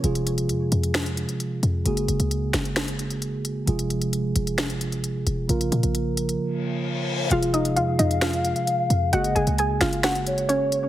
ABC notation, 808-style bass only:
X:1
M:4/4
L:1/16
Q:1/4=132
K:Fphr
V:1 name="808-style bass" clef=bass
F,,,4 F,,2 F,,4- F,, z3 F,,2 | G,,,2 G,,, D,,3 G,,,6- G,,, F,,,3 | F,,,4 E,,, F,,, F,,,4- F,,, A,,,3/2 F,,,3/2 F,,,2 | B,,,2 B,, B,,,4- B,,, z8 |
F,,,4 F,,2 F,,4- F,, z3 F,,2 | G,,,2 G,,, D,,3 G,,,6- G,,, F,,,3 |]